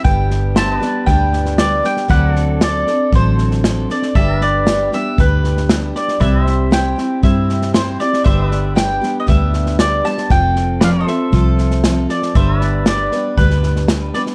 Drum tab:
HH |----p-------p---|----p-------p---|----p-------p---|----p-------p---|
SD |o-o-o-o-o-ooo-oo|o-o-o-o-o-ooo-oo|o-o-o-o-o-ooo-oo|o-o-o-o-o-ooo-oo|
BD |o-------o-------|o-------o-------|o-------o-------|o-------o-------|

HH |----p-------p---|----p-------p---|----p-------p---|
SD |o-o-o-o-o-ooo-oo|o-o-o-o-o-ooo-oo|o-o-o-o-ooooo-oo|
BD |o-------o-------|o-------o-------|o-------o-------|